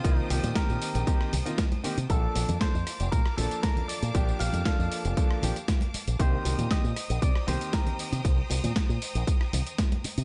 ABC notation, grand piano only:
X:1
M:4/4
L:1/16
Q:1/4=117
K:Cdor
V:1 name="Grand piano"
[E,B,CF]4 [E,B,CG]4 [E,B,CG]2 z [E,B,CF] z2 [E,B,CG] z | [F,B,DA]4 [F,B,DA] z4 z [F,B,DA]6 | [F,B,DG]4 [F,B,DA]4 [F,B,DA]2 [F,B,DG] z4 z | [E,B,CG]4 [E,B,CG] z4 z [E,B,CG]6 |
z16 |]